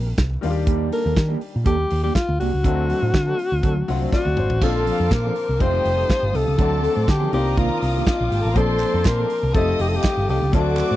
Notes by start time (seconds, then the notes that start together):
Already playing: A#1 E3 G3 A#3 C4 G4 A#4
0.06 muted clean electric guitar stroke
0.17 C2, muted clean electric guitar stroke, kick, snare, closed hi-hat
0.30 muted clean electric guitar stroke
0.41 D#2 D#3 G3 A#3 D4 F4, open hi-hat
0.50 G4
0.54 muted clean electric guitar stroke
0.66 G3 A#3 D4 G4, kick, closed hi-hat
0.91 G3 A#3 D4 A4 A#4, open hi-hat
1.04 D#2 G3 A#3 D4 A4
1.16 D#3, kick, snare, closed hi-hat
1.28 G3 A#3 D4 G4
1.40 muted clean electric guitar stroke, open hi-hat
1.53 A#2, muted clean electric guitar stroke
1.64 D#2 G3 A#3 D4 G4 A4, kick, closed hi-hat
1.78 muted clean electric guitar stroke
1.89 D#2, muted clean electric guitar stroke, open hi-hat
2.02 G3 A#3 D4 G4
2.14 F4, muted clean electric guitar stroke, kick, snare, closed hi-hat
2.28 D2, muted clean electric guitar stroke
2.39 C2 G3 A#3 D4 F#4 G4, open hi-hat
2.53 C#2, muted clean electric guitar stroke
2.63 D2 D3 F#3 A3 C4 D4 F#4 A4, kick, closed hi-hat
2.89 F#3 C4 D4 A4, open hi-hat
3.02 A2 F#3 C4 D4 C5
3.13 D3, muted clean electric guitar stroke, kick, snare, closed hi-hat
3.26 F#3 C4 D4 A4
3.38 muted clean electric guitar stroke, open hi-hat
3.51 D2, muted clean electric guitar stroke
3.62 D2 F#3 C4 D4 A4, kick, closed hi-hat
3.76 muted clean electric guitar stroke
3.87 C2 D3 F#3 A3 C4 F4 F#5, muted clean electric guitar stroke, open hi-hat
3.95 F#4
4.01 F#3 C4 D4 C5
4.12 F#4 D5, muted clean electric guitar stroke, kick, snare
4.25 D2, muted clean electric guitar stroke, high tom
4.37 G#1 C5, mid tom
4.50 A1, floor tom
4.61 A#1 D3 F3 A#3 C4 D4 F4 A4 C5 F5 A5 D6, kick, crash
4.87 F3 C4 D4 A#4, open hi-hat
5.00 F2 F3 C4 D4 A#4
5.11 A#2 A#4, kick, snare, closed hi-hat
5.24 F3 C4 D4 A4
5.35 muted clean electric guitar stroke, open hi-hat
5.48 C2, muted clean electric guitar stroke
5.59 F1 D#3 G3 G#3 C4 D#4 F4 G4 C5 F5 G5 A5 D#6, kick, closed hi-hat
5.66 A3
5.73 muted clean electric guitar stroke
5.84 F1, muted clean electric guitar stroke, open hi-hat
5.96 G3 C4 D#4 A4
6.08 muted clean electric guitar stroke, kick, snare, closed hi-hat
6.21 G1, muted clean electric guitar stroke
6.32 C2 G3 C4 D#4 A4, open hi-hat
6.46 C#2, muted clean electric guitar stroke
6.57 D2 D3 F#3 A3 C4 D4 F#4 A4 F#5 A5 C6 D6, kick, closed hi-hat
6.82 F#3 C4 D4 A4, open hi-hat
6.95 A2 F#3 C4 D4 C5
7.07 D3 G4, muted clean electric guitar stroke, kick, snare, closed hi-hat
7.19 F#3 C4 D4 A4
7.32 C2 D#3 A#3 C4 D4 F4 G4 A#4 F5 A#5 D6 D#6, muted clean electric guitar stroke, open hi-hat
7.45 muted clean electric guitar stroke
7.56 D#3 A#3 D4 F4, kick, closed hi-hat
7.70 muted clean electric guitar stroke
7.82 C2, muted clean electric guitar stroke, open hi-hat
7.95 D#3 A#3 D4 G4
8.06 D4 F4 D5, kick, snare, closed hi-hat
8.15 D#4 D#5
8.19 A#1 F4 F5, muted clean electric guitar stroke
8.31 G#1 G4 G5, open hi-hat
8.39 A4 A5
8.44 A1 A#4 A#5, muted clean electric guitar stroke
8.55 A#1 F3 A#3 C4 D4 A4 C5 A5 C6, kick, closed hi-hat
8.80 F3 C4 D4 A#4, clap, open hi-hat
8.93 F2 F3 C4 D4 A#4
9.05 A#2 A#4, kick, snare, clap, closed hi-hat
9.18 F3 C4 D4 A4
9.30 muted clean electric guitar stroke, open hi-hat
9.42 C2, muted clean electric guitar stroke
9.53 F1 F3 G3 A3 C4 D#4 G4 A4 C5 D#5 F5 G5 D#6, kick, closed hi-hat
9.67 muted clean electric guitar stroke
9.79 F1 G4, muted clean electric guitar stroke, open hi-hat
9.88 A4
9.92 G3 C4 D#4 G4
10.04 kick, snare, clap, closed hi-hat
10.16 G1, muted clean electric guitar stroke
10.27 C2 G3 C4 D#4 G4 A4, open hi-hat
10.41 C#2, muted clean electric guitar stroke
10.52 D2 F#3 A3 C4 D4 F#4 A4 D5 F#5 C6 D6, kick, closed hi-hat
10.77 F#3 C4 D4 A4, clap, open hi-hat
10.90 A2 F#3 C4 D4 C5